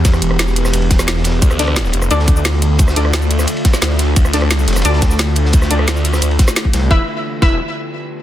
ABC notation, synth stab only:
X:1
M:4/4
L:1/8
Q:1/4=175
K:Ddor
V:1 name="Synth stab"
z8 | z [DAd] z2 [DAd]4- | [DAd] [DAd]4 z3 | z [DAd] z2 [DAd]4- |
[DAd] [DAd]4 z3 | [EBe] z2 [EBe] z4 |]